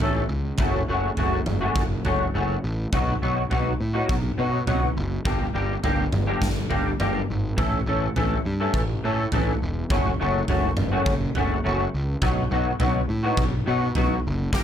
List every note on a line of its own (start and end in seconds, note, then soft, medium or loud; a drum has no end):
0.00 0.22 A1 medium
0.00 0.20 E3 medium
0.00 0.20 A3 medium
0.00 0.21 C#4 medium
0.00 0.21 A4 medium
0.00 floor tom medium
0.29 0.51 C#2 medium
0.58 0.81 F#1 loud
0.58 0.78 F#3 medium
0.58 0.78 A3 medium
0.58 0.79 C#4 medium
0.58 0.79 F#4 medium
0.58 kick loud
0.58 floor tom medium
0.88 1.10 F#1 medium
0.88 1.07 F#3 medium
0.88 1.08 A3 medium
0.88 1.08 C#4 medium
0.88 1.08 F#4 medium
1.17 1.39 F#1 medium
1.17 1.37 F#3 medium
1.17 1.37 A3 medium
1.17 1.37 C#4 medium
1.17 1.37 F#4 medium
1.17 floor tom medium
1.46 1.68 F#1 medium
1.46 mid tom medium
1.61 1.81 F#3 medium
1.61 1.80 A3 medium
1.61 1.80 C#4 medium
1.61 1.80 F#4 medium
1.76 1.97 F#1 medium
1.76 kick loud
2.05 2.27 F#1 medium
2.05 2.24 F#3 medium
2.05 2.24 A3 medium
2.05 2.24 C#4 medium
2.05 2.24 F#4 medium
2.05 floor tom medium
2.34 2.56 F#1 medium
2.34 2.53 F#3 medium
2.34 2.53 A3 medium
2.34 2.53 C#4 medium
2.34 2.54 F#4 medium
2.64 2.85 A1 medium
2.93 3.14 B1 medium
2.93 3.12 F#3 medium
2.93 3.12 B3 medium
2.93 3.12 D#4 medium
2.93 3.12 F#4 medium
2.93 kick loud
2.93 floor tom medium
3.22 3.44 B1 medium
3.22 3.41 F#3 medium
3.22 3.41 B3 medium
3.22 3.41 D#4 medium
3.22 3.41 F#4 medium
3.50 3.73 B1 medium
3.50 3.69 F#3 medium
3.50 3.70 B3 medium
3.50 3.70 D#4 loud
3.50 3.70 F#4 medium
3.50 floor tom medium
3.81 4.02 A2 medium
3.94 4.13 F#3 medium
3.94 4.13 B3 medium
3.94 4.13 D#4 medium
3.94 4.13 F#4 medium
4.09 4.31 B1 medium
4.09 kick loud
4.38 4.60 B2 medium
4.38 4.57 F#3 medium
4.38 4.57 B3 medium
4.38 4.57 D#4 loud
4.38 4.57 F#4 loud
4.67 4.89 B1 medium
4.67 4.86 F#3 medium
4.67 4.86 B3 medium
4.67 4.86 D#4 medium
4.67 4.86 F#4 medium
4.67 floor tom medium
4.97 5.18 F#1 medium
5.25 5.47 G1 medium
5.25 5.44 G3 medium
5.25 5.44 A#3 medium
5.25 5.44 D4 medium
5.25 5.44 G4 loud
5.25 kick loud
5.25 floor tom medium
5.54 5.76 G1 medium
5.54 5.73 G3 medium
5.54 5.73 A#3 medium
5.54 5.73 D4 medium
5.54 5.73 G4 medium
5.83 6.05 G1 medium
5.83 6.02 G3 medium
5.83 6.02 A#3 medium
5.83 6.03 D4 medium
5.83 6.03 G4 medium
5.83 floor tom medium
6.12 6.34 G1 medium
6.12 mid tom medium
6.27 6.47 G3 medium
6.27 6.46 A#3 medium
6.27 6.46 D4 medium
6.27 6.46 G4 medium
6.41 6.63 G1 medium
6.41 kick loud
6.41 snare medium
6.70 6.91 G1 medium
6.70 6.89 G3 medium
6.70 6.89 A#3 loud
6.70 6.89 D4 medium
6.70 6.90 G4 medium
6.70 floor tom medium
7.00 7.21 G1 medium
7.00 7.19 G3 medium
7.00 7.19 A#3 medium
7.00 7.19 D4 medium
7.00 7.19 G4 medium
7.00 mid tom medium
7.30 7.51 G#1 medium
7.57 7.79 A1 loud
7.57 7.76 E3 medium
7.57 7.77 A3 medium
7.57 7.77 C#4 medium
7.57 7.77 A4 medium
7.57 kick loud
7.57 floor tom medium
7.86 8.08 A1 medium
7.86 8.06 E3 medium
7.86 8.06 A3 medium
7.86 8.06 C#4 medium
7.86 8.07 A4 medium
8.16 8.38 A1 medium
8.16 8.35 E3 medium
8.16 8.35 A3 medium
8.16 8.35 C#4 medium
8.16 8.35 A4 loud
8.16 floor tom medium
8.45 8.67 G2 medium
8.60 8.79 E3 medium
8.60 8.79 A3 medium
8.60 8.79 C#4 medium
8.60 8.79 A4 medium
8.74 8.95 A1 medium
8.74 kick loud
9.04 9.25 A2 medium
9.04 9.22 E3 medium
9.04 9.22 A3 medium
9.04 9.23 C#4 medium
9.04 9.23 A4 loud
9.32 9.54 A1 medium
9.32 9.51 E3 medium
9.32 9.51 A3 medium
9.32 9.51 C#4 medium
9.32 9.52 A4 medium
9.32 floor tom medium
9.62 9.83 E1 medium
9.90 10.12 F#1 loud
9.90 10.09 F#3 medium
9.90 10.09 A3 medium
9.90 10.09 C#4 medium
9.90 10.10 F#4 medium
9.90 kick loud
9.90 floor tom medium
10.20 10.42 F#1 medium
10.20 10.38 F#3 medium
10.20 10.38 A3 medium
10.20 10.39 C#4 medium
10.20 10.39 F#4 medium
10.48 10.70 F#1 medium
10.48 10.67 F#3 medium
10.48 10.67 A3 medium
10.48 10.68 C#4 medium
10.48 10.67 F#4 medium
10.48 floor tom medium
10.77 10.99 F#1 medium
10.77 mid tom medium
10.92 11.11 F#3 medium
10.92 11.11 A3 medium
10.92 11.11 C#4 medium
10.92 11.10 F#4 medium
11.06 11.28 F#1 medium
11.06 kick loud
11.35 11.57 F#1 medium
11.35 11.54 F#3 medium
11.35 11.54 A3 loud
11.35 11.55 C#4 medium
11.35 11.55 F#4 medium
11.35 floor tom medium
11.64 11.86 F#1 medium
11.64 11.83 F#3 medium
11.64 11.83 A3 medium
11.64 11.83 C#4 medium
11.64 11.83 F#4 loud
11.94 12.15 C#2 medium
12.22 12.44 B1 medium
12.22 12.41 F#3 medium
12.22 12.41 B3 medium
12.22 12.41 D#4 medium
12.22 12.41 F#4 medium
12.22 kick loud
12.22 floor tom medium
12.51 12.72 B1 medium
12.51 12.70 F#3 medium
12.51 12.70 B3 medium
12.51 12.70 D#4 medium
12.51 12.70 F#4 medium
12.79 13.02 B1 medium
12.79 12.98 F#3 medium
12.79 12.99 B3 medium
12.79 12.99 D#4 medium
12.79 12.99 F#4 medium
12.79 floor tom medium
13.09 13.30 A2 medium
13.23 13.43 F#3 medium
13.23 13.43 B3 medium
13.23 13.43 D#4 medium
13.23 13.42 F#4 medium
13.37 13.59 B1 medium
13.37 kick loud
13.66 13.88 B2 medium
13.66 13.85 F#3 medium
13.66 13.86 B3 medium
13.66 13.86 D#4 loud
13.66 13.86 F#4 loud
13.95 14.18 B1 medium
13.95 14.14 F#3 medium
13.95 14.14 B3 medium
13.95 14.14 D#4 medium
13.95 14.15 F#4 medium
13.95 floor tom medium
14.27 14.47 F#1 medium
14.53 14.63 G1 loud
14.53 14.63 G3 medium
14.53 14.63 A#3 medium
14.53 14.63 D4 medium
14.53 14.63 G4 medium
14.53 kick loud
14.53 snare medium